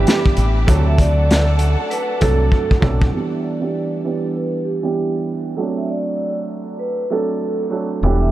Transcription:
Already playing: upright piano E3 G3 B3 D4 G4, vibraphone G4, string section G4 E5 B5 D6
0.07 snare, closed hi-hat
0.26 kick
0.37 fingered electric bass A1, closed hi-hat
0.67 fingered electric bass D2, upright piano F#3 A3 C4 D4 A4, string section A4 F#5 A5, kick, closed hi-hat
0.87 vibraphone E5
0.98 vibraphone D5, kick, closed hi-hat
1.31 snare, closed hi-hat
1.59 closed hi-hat
1.90 vibraphone B4, closed hi-hat
2.20 fingered electric bass C2, upright piano F#3 A3 C4 D4 A4, vibraphone A4, kick, closed hi-hat
2.52 kick
2.71 kick
2.80 fingered electric bass B1, upright piano F#3 A3 C4 D4 A4, kick
3.02 kick
3.14 upright piano E3 G3 B3 D4 G4
3.32 vibraphone E5
3.42 vibraphone D5
3.60 upright piano E3 G3 B3 D4 G4
4.05 upright piano E3 G3 B3 D4 G4
4.35 vibraphone B4
4.65 vibraphone G4
4.83 upright piano E3 G3 B3 D4 G4
5.57 upright piano F#3 A3 C4 D4 A4
5.77 vibraphone E5
5.88 vibraphone D5
6.79 vibraphone B4
7.10 upright piano F#3 A3 C4 D4 A4, vibraphone A4
7.70 upright piano F#3 A3 C4 D4 A4
8.03 fingered electric bass E1, upright piano E3 G3 B3 D4 G4
8.21 vibraphone E5

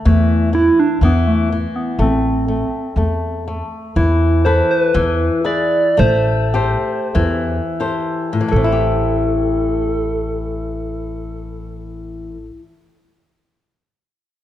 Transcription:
0.05 upright bass E2, nylon-string guitar E3, soft synth lead A3
0.53 nylon-string guitar E3, soft synth lead E4
0.80 soft synth lead D4
1.01 upright bass E2, nylon-string guitar E3, soft synth lead B3
1.28 soft synth lead A3
1.52 nylon-string guitar E3
1.76 soft synth lead B3
1.99 upright bass A1, nylon-string guitar A3, soft synth lead C4
2.48 nylon-string guitar A3
2.96 upright bass E2, nylon-string guitar A3
3.48 nylon-string guitar A3
3.96 upright bass E2, nylon-string guitar E3, soft synth lead E4
4.45 nylon-string guitar E4 A4 B4, soft synth lead C5
4.71 soft synth lead C5
4.82 soft synth lead B4
4.94 upright bass E2, nylon-string guitar E3
5.44 nylon-string guitar E4 G#4 B4, soft synth lead D5
5.97 upright bass A1, nylon-string guitar A3, soft synth lead C5
6.54 nylon-string guitar G4 A4 C5
7.15 upright bass E2, nylon-string guitar E3
7.80 nylon-string guitar G4 A4 C5
8.33 nylon-string guitar A2
8.41 nylon-string guitar E3
8.48 nylon-string guitar A3, soft synth lead A4
8.52 upright bass A1, nylon-string guitar C4
8.64 nylon-string guitar E4
8.72 nylon-string guitar G4

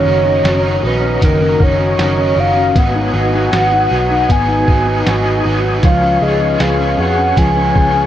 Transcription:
Already playing: clean electric guitar D#3 A#3 C#4, tonewheel organ F#4 C#5 A#5 D#6, soft synth lead C#5
0.05 picked electric bass F#1, overdriven electric guitar D#4 A#4, clean electric guitar F#4
0.10 overdriven electric guitar C#4
0.25 clean electric guitar C#4
0.43 picked electric bass F#1, overdriven electric guitar F#3 C#4 D#4, clean electric guitar F#4, snare, closed hi-hat
0.48 overdriven electric guitar A#4
0.64 clean electric guitar C#4
0.83 picked electric bass A#1, overdriven electric guitar C#4 D#4, clean electric guitar F#4, soft synth lead B4
1.02 clean electric guitar C#4
1.21 picked electric bass F#1, clean electric guitar D#3, overdriven electric guitar F#3 C#4 D#4 A#4, soft synth lead A#4, kick, closed hi-hat
1.41 clean electric guitar C#4
1.59 picked electric bass F#1, overdriven electric guitar D#4 A#4, clean electric guitar F#4, soft synth lead C#5, kick
1.64 overdriven electric guitar C#4
1.79 clean electric guitar C#4
1.97 picked electric bass F#1, overdriven electric guitar F#3 C#4 D#4, clean electric guitar F#4, snare, closed hi-hat
2.02 overdriven electric guitar A#4
2.18 clean electric guitar C#4
2.36 picked electric bass F#1, overdriven electric guitar D#4 A#4, clean electric guitar F#4, soft synth lead F5
2.41 overdriven electric guitar C#4
2.56 clean electric guitar C#4
2.74 picked electric bass G#1, overdriven electric guitar G#2 D#3 F#3 B3 D#4 G#4, clean electric guitar B3, tonewheel organ B4 G#5 D#6, soft synth lead F#5, kick, closed hi-hat
2.95 clean electric guitar D#4
3.13 picked electric bass G#1, overdriven electric guitar B3 D#4 G#4, clean electric guitar F#4
3.18 overdriven electric guitar F#3
3.34 clean electric guitar D#4
3.51 picked electric bass G#1, overdriven electric guitar F#3 B3 D#4, clean electric guitar F#4, snare, closed hi-hat
3.56 overdriven electric guitar G#4
3.72 clean electric guitar D#4
3.90 picked electric bass B1, overdriven electric guitar B3 D#4 G#4, clean electric guitar F#4
3.94 overdriven electric guitar F#3
4.10 clean electric guitar D#4
4.29 picked electric bass G#1, overdriven electric guitar G#2 D#3 F#3 B3 D#4 G#4, clean electric guitar B3, soft synth lead G#5, kick, closed hi-hat
4.48 clean electric guitar D#4
4.67 picked electric bass G#1, overdriven electric guitar B3 D#4 G#4, clean electric guitar F#4, kick
4.72 overdriven electric guitar F#3
4.86 clean electric guitar D#4
5.05 picked electric bass G#1, overdriven electric guitar F#3 B3 D#4, clean electric guitar F#4, snare, closed hi-hat
5.10 overdriven electric guitar G#4
5.25 clean electric guitar D#4
5.44 picked electric bass G#1, overdriven electric guitar B3 D#4 G#4, clean electric guitar F#4
5.49 overdriven electric guitar F#3
5.64 clean electric guitar D#4
5.82 picked electric bass C#2, overdriven electric guitar C#3 G#3 B3 F4 G#4, clean electric guitar F3, tonewheel organ C#5 C#6, soft synth lead F5, kick, closed hi-hat
6.02 clean electric guitar C#4
6.20 picked electric bass C#2, overdriven electric guitar F4 G#4, clean electric guitar G#4, soft synth lead D#5
6.25 overdriven electric guitar B3
6.41 clean electric guitar C#4
6.59 picked electric bass C#2, overdriven electric guitar G#3 B3 F4, clean electric guitar G#4, soft synth lead F5, snare, closed hi-hat
6.64 overdriven electric guitar G#4
6.80 clean electric guitar C#4
6.98 picked electric bass F2, overdriven electric guitar G#4, clean electric guitar G#4, soft synth lead F#5
7.02 overdriven electric guitar B3
7.18 clean electric guitar C#4
7.37 picked electric bass C#2, overdriven electric guitar C#3 G#3 B3 F4 G#4, clean electric guitar F3, soft synth lead G#5, kick, closed hi-hat
7.57 clean electric guitar C#4
7.75 picked electric bass C#2, overdriven electric guitar F4 G#4, clean electric guitar G#4, kick
7.80 overdriven electric guitar B3
7.95 clean electric guitar C#4

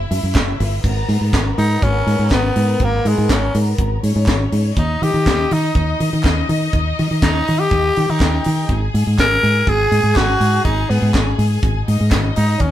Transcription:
Already playing: string section E4 E5
0.11 fingered electric bass F#2, open hi-hat
0.23 fingered electric bass F#2
0.35 fingered electric bass F#1, kick, snare, clap, closed hi-hat
0.36 clap
0.60 fingered electric bass G1, open hi-hat
0.83 fingered electric bass G#1, string section B3 A#4, kick, crash
1.08 fingered electric bass G#2, open hi-hat
1.21 fingered electric bass G#2
1.33 fingered electric bass G#1, kick, snare, clap, closed hi-hat
1.58 fingered electric bass G#2, tenor saxophone D#4, open hi-hat
1.82 fingered electric bass G#1, tenor saxophone C#4, kick, closed hi-hat
2.07 fingered electric bass G#2, open hi-hat
2.19 fingered electric bass G#2
2.30 fingered electric bass G#1, kick, snare, clap, closed hi-hat
2.32 tenor saxophone B3, clap
2.56 fingered electric bass G#2, open hi-hat
2.80 fingered electric bass G#1, tenor saxophone A#3, kick, closed hi-hat
3.05 fingered electric bass G#2, tenor saxophone G#3, open hi-hat
3.18 fingered electric bass G#2
3.29 fingered electric bass G#1, kick, snare, clap, closed hi-hat
3.34 tenor saxophone C#4
3.54 fingered electric bass G#2, open hi-hat
3.78 fingered electric bass G#1, kick, closed hi-hat
4.03 fingered electric bass G#2, string section C#4 C#5, open hi-hat
4.16 fingered electric bass G#2
4.26 fingered electric bass G#1, kick, snare, clap, closed hi-hat
4.29 clap
4.52 fingered electric bass G#2, open hi-hat
4.76 fingered electric bass D#2, string section D#4 D#5, tenor saxophone D#4, kick, closed hi-hat
5.02 fingered electric bass D#3, tenor saxophone G4, open hi-hat
5.14 fingered electric bass D#3
5.26 fingered electric bass D#2, kick, snare, clap, closed hi-hat
5.51 fingered electric bass D#3, tenor saxophone D#4, open hi-hat
5.75 fingered electric bass D#2, kick, closed hi-hat
6.00 fingered electric bass D#3, open hi-hat
6.13 fingered electric bass D#3
6.23 fingered electric bass D#2, kick, snare, clap, closed hi-hat
6.26 clap
6.49 fingered electric bass D#3, open hi-hat
6.73 fingered electric bass D#2, kick, closed hi-hat
6.99 fingered electric bass D#3, open hi-hat
7.11 fingered electric bass D#3
7.22 fingered electric bass D#2, tenor saxophone D#4, kick, snare, clap, closed hi-hat
7.47 fingered electric bass D#3, open hi-hat
7.59 tenor saxophone G4
7.71 fingered electric bass D#2, kick, closed hi-hat
7.96 fingered electric bass D#3, string section G4 G5, open hi-hat
8.09 fingered electric bass D#3, tenor saxophone D#4
8.20 fingered electric bass D#2, kick, snare, clap, closed hi-hat
8.22 clap
8.44 fingered electric bass D#3, open hi-hat
8.69 fingered electric bass G#1, string section G#4 G#5, kick, closed hi-hat
8.94 fingered electric bass G#2, open hi-hat
9.07 fingered electric bass G#2
9.19 fingered electric bass G#1, tenor saxophone A#4, kick, snare, clap, closed hi-hat
9.43 fingered electric bass G#2, open hi-hat
9.67 fingered electric bass G#1, tenor saxophone G#4, kick, closed hi-hat
9.91 fingered electric bass G#2, open hi-hat
10.03 fingered electric bass G#2
10.15 fingered electric bass G#1, tenor saxophone F#4, kick, snare, clap
10.18 clap
10.40 fingered electric bass G#2, open hi-hat
10.65 fingered electric bass G#1, tenor saxophone D#4, kick, closed hi-hat
10.90 fingered electric bass G#2, tenor saxophone B3, open hi-hat
11.02 fingered electric bass G#2
11.14 fingered electric bass G#1, kick, snare, clap
11.38 fingered electric bass G#2, open hi-hat
11.63 fingered electric bass G#1, kick, closed hi-hat
11.87 fingered electric bass G#2, string section D#4 D#5, open hi-hat
12.01 fingered electric bass G#2
12.11 fingered electric bass G#1, kick, snare, clap, closed hi-hat
12.36 fingered electric bass G#2, tenor saxophone D#4, open hi-hat
12.60 fingered electric bass D#2, tenor saxophone C#4, string section C#4 C#5, kick, closed hi-hat

